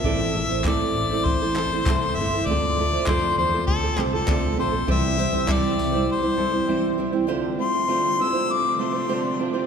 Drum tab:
TB |--------|--------|-x-x----|--------|
CP |--x--xx-|--x--xx-|--x-----|--------|
BD |o-o-o-o-|o-o-o-o-|o-o-----|--------|